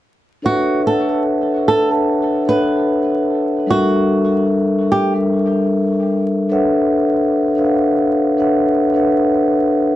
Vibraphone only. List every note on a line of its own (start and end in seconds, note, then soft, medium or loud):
0.42 0.95 D4 medium
0.42 0.96 A4 medium
0.42 0.96 B4 medium
0.42 0.96 C#5 medium
0.42 0.96 E5 medium
0.42 0.97 F#5 loud
1.08 1.72 D4 medium
1.08 1.73 A4 medium
1.08 1.73 B4 medium
1.08 1.73 C#5 medium
1.08 1.74 E5 medium
1.08 1.74 F#5 medium
1.88 2.37 D4 medium
1.88 2.38 A4 medium
1.88 2.38 B4 medium
1.88 2.38 C#5 medium
1.88 2.38 E5 medium
1.88 2.39 F#5 medium
2.46 3.51 D4 medium
2.46 3.51 A4 medium
2.46 3.52 B4 medium
2.46 3.52 C#5 medium
2.46 3.52 E5 medium
2.46 3.52 F#5 medium
3.67 4.85 G3 medium
3.67 4.86 D4 medium
3.67 4.86 A4 medium
3.67 4.87 A#4 medium
3.67 4.87 E5 medium
5.13 6.30 G3 medium
5.13 6.31 D4 medium
5.13 6.31 A4 medium
5.13 6.31 A#4 medium
5.13 6.32 E5 medium
6.49 7.35 D4 medium
6.49 7.35 A4 medium
6.49 7.35 B4 medium
6.49 7.36 C#5 medium
6.49 7.36 E5 medium
6.49 7.36 F#5 medium
7.56 8.21 D4 medium
7.56 8.21 A4 medium
7.56 8.21 B4 medium
7.56 8.22 C#5 medium
7.56 8.22 E5 medium
7.56 7.63 F5 medium
7.65 8.25 F#5 medium
8.37 8.86 D4 medium
8.37 8.86 A4 medium
8.37 8.87 B4 medium
8.37 8.87 C#5 medium
8.37 8.87 E5 medium
8.37 8.87 F#5 medium
8.94 9.96 D4 medium
8.94 9.96 A4 medium
8.94 9.96 B4 medium
8.94 9.96 C#5 medium
8.94 9.96 E5 medium
8.94 9.96 F#5 medium